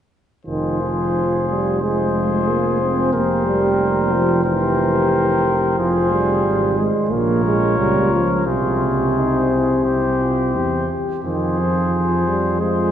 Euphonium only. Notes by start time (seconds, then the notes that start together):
0.46 D#3
0.81 F3
1.48 G3
1.82 G#3
2.48 A#3
2.81 C4
3.13 A#3
3.46 G3
4.12 F3
4.45 E3
5.78 F3
6.11 G3
6.78 G#3
7.12 A#3
7.45 G#3
7.78 G3
8.13 F3
8.47 C3
11.24 D#3
11.59 F3
12.27 G3
12.60 G#3